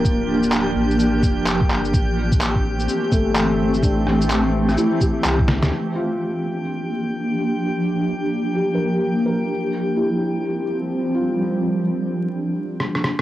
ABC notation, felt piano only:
X:1
M:4/4
L:1/16
Q:"Swing 16ths" 1/4=127
K:Gdor
V:1 name="Felt piano"
B,4 z12 | z8 z2 A,6 | D6 z2 E2 G6 | z2 F6 z8 |
z8 G B4- B B2- | B2 z2 E6 z4 F2- | F4 z12 |]